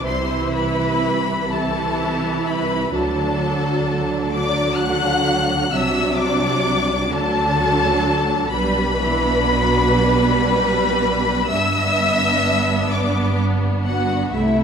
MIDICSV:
0, 0, Header, 1, 6, 480
1, 0, Start_track
1, 0, Key_signature, 1, "major"
1, 0, Tempo, 969305
1, 10, Time_signature, 6, 3, 24, 8
1, 1450, Tempo, 930233
1, 4810, Tempo, 985222
1, 5290, Tempo, 1083032
1, 5770, Tempo, 952381
1, 7346, End_track
2, 0, Start_track
2, 0, Title_t, "Violin section"
2, 0, Program_c, 0, 48
2, 24, Note_on_c, 0, 84, 97
2, 256, Note_off_c, 0, 84, 0
2, 259, Note_on_c, 0, 83, 109
2, 732, Note_off_c, 0, 83, 0
2, 746, Note_on_c, 0, 81, 102
2, 1214, Note_off_c, 0, 81, 0
2, 1222, Note_on_c, 0, 83, 99
2, 1454, Note_off_c, 0, 83, 0
2, 1455, Note_on_c, 0, 81, 96
2, 2169, Note_on_c, 0, 86, 118
2, 2172, Note_off_c, 0, 81, 0
2, 2404, Note_off_c, 0, 86, 0
2, 2409, Note_on_c, 0, 90, 117
2, 2895, Note_on_c, 0, 88, 115
2, 2896, Note_off_c, 0, 90, 0
2, 3131, Note_on_c, 0, 86, 120
2, 3137, Note_off_c, 0, 88, 0
2, 3603, Note_off_c, 0, 86, 0
2, 3610, Note_on_c, 0, 81, 127
2, 4329, Note_on_c, 0, 83, 127
2, 4334, Note_off_c, 0, 81, 0
2, 5750, Note_off_c, 0, 83, 0
2, 5769, Note_on_c, 0, 88, 125
2, 6480, Note_on_c, 0, 86, 99
2, 6482, Note_off_c, 0, 88, 0
2, 6718, Note_off_c, 0, 86, 0
2, 6951, Note_on_c, 0, 78, 99
2, 7180, Note_off_c, 0, 78, 0
2, 7200, Note_on_c, 0, 76, 86
2, 7346, Note_off_c, 0, 76, 0
2, 7346, End_track
3, 0, Start_track
3, 0, Title_t, "Violin section"
3, 0, Program_c, 1, 48
3, 16, Note_on_c, 1, 72, 94
3, 252, Note_off_c, 1, 72, 0
3, 262, Note_on_c, 1, 71, 97
3, 744, Note_off_c, 1, 71, 0
3, 748, Note_on_c, 1, 69, 87
3, 1215, Note_off_c, 1, 69, 0
3, 1219, Note_on_c, 1, 71, 98
3, 1448, Note_off_c, 1, 71, 0
3, 1458, Note_on_c, 1, 69, 85
3, 2171, Note_on_c, 1, 74, 103
3, 2173, Note_off_c, 1, 69, 0
3, 2407, Note_on_c, 1, 78, 111
3, 2410, Note_off_c, 1, 74, 0
3, 2894, Note_on_c, 1, 76, 104
3, 2895, Note_off_c, 1, 78, 0
3, 3132, Note_off_c, 1, 76, 0
3, 3140, Note_on_c, 1, 74, 98
3, 3608, Note_off_c, 1, 74, 0
3, 3611, Note_on_c, 1, 69, 98
3, 4334, Note_off_c, 1, 69, 0
3, 4335, Note_on_c, 1, 71, 123
3, 5753, Note_off_c, 1, 71, 0
3, 5771, Note_on_c, 1, 76, 127
3, 6481, Note_on_c, 1, 74, 85
3, 6483, Note_off_c, 1, 76, 0
3, 6719, Note_off_c, 1, 74, 0
3, 6956, Note_on_c, 1, 66, 87
3, 7183, Note_off_c, 1, 66, 0
3, 7199, Note_on_c, 1, 64, 86
3, 7346, Note_off_c, 1, 64, 0
3, 7346, End_track
4, 0, Start_track
4, 0, Title_t, "Viola section"
4, 0, Program_c, 2, 48
4, 11, Note_on_c, 2, 52, 77
4, 12, Note_on_c, 2, 64, 82
4, 726, Note_off_c, 2, 52, 0
4, 735, Note_off_c, 2, 64, 0
4, 740, Note_on_c, 2, 52, 89
4, 741, Note_on_c, 2, 64, 82
4, 1435, Note_off_c, 2, 52, 0
4, 1435, Note_off_c, 2, 64, 0
4, 1454, Note_on_c, 2, 62, 80
4, 1456, Note_on_c, 2, 54, 83
4, 2158, Note_off_c, 2, 54, 0
4, 2165, Note_off_c, 2, 62, 0
4, 2172, Note_on_c, 2, 54, 88
4, 2172, Note_on_c, 2, 62, 85
4, 2883, Note_off_c, 2, 54, 0
4, 2883, Note_off_c, 2, 62, 0
4, 2894, Note_on_c, 2, 54, 90
4, 2894, Note_on_c, 2, 62, 88
4, 3591, Note_off_c, 2, 54, 0
4, 3591, Note_off_c, 2, 62, 0
4, 3608, Note_on_c, 2, 62, 93
4, 3611, Note_on_c, 2, 54, 91
4, 4318, Note_off_c, 2, 62, 0
4, 4320, Note_off_c, 2, 54, 0
4, 4334, Note_on_c, 2, 55, 90
4, 4334, Note_on_c, 2, 62, 81
4, 4556, Note_off_c, 2, 55, 0
4, 4574, Note_on_c, 2, 52, 85
4, 4809, Note_off_c, 2, 52, 0
4, 4812, Note_on_c, 2, 54, 89
4, 5041, Note_off_c, 2, 54, 0
4, 5045, Note_on_c, 2, 55, 86
4, 5752, Note_off_c, 2, 62, 0
4, 5766, Note_on_c, 2, 59, 87
4, 5766, Note_on_c, 2, 62, 82
4, 5772, Note_off_c, 2, 55, 0
4, 7179, Note_off_c, 2, 62, 0
4, 7197, Note_on_c, 2, 57, 78
4, 7198, Note_on_c, 2, 64, 73
4, 7200, Note_off_c, 2, 59, 0
4, 7346, Note_off_c, 2, 57, 0
4, 7346, Note_off_c, 2, 64, 0
4, 7346, End_track
5, 0, Start_track
5, 0, Title_t, "Cello section"
5, 0, Program_c, 3, 48
5, 11, Note_on_c, 3, 48, 81
5, 1429, Note_off_c, 3, 48, 0
5, 1453, Note_on_c, 3, 50, 87
5, 2877, Note_off_c, 3, 50, 0
5, 2894, Note_on_c, 3, 48, 98
5, 3591, Note_off_c, 3, 48, 0
5, 3604, Note_on_c, 3, 50, 83
5, 4326, Note_on_c, 3, 47, 104
5, 4330, Note_off_c, 3, 50, 0
5, 5748, Note_off_c, 3, 47, 0
5, 5763, Note_on_c, 3, 43, 95
5, 7177, Note_off_c, 3, 43, 0
5, 7198, Note_on_c, 3, 48, 84
5, 7346, Note_off_c, 3, 48, 0
5, 7346, End_track
6, 0, Start_track
6, 0, Title_t, "Double bass section"
6, 0, Program_c, 4, 48
6, 13, Note_on_c, 4, 36, 75
6, 1431, Note_off_c, 4, 36, 0
6, 1454, Note_on_c, 4, 38, 78
6, 2878, Note_off_c, 4, 38, 0
6, 2896, Note_on_c, 4, 36, 84
6, 3592, Note_off_c, 4, 36, 0
6, 3604, Note_on_c, 4, 38, 83
6, 4330, Note_off_c, 4, 38, 0
6, 4330, Note_on_c, 4, 35, 87
6, 5750, Note_off_c, 4, 35, 0
6, 5771, Note_on_c, 4, 31, 78
6, 7182, Note_off_c, 4, 31, 0
6, 7198, Note_on_c, 4, 36, 73
6, 7346, Note_off_c, 4, 36, 0
6, 7346, End_track
0, 0, End_of_file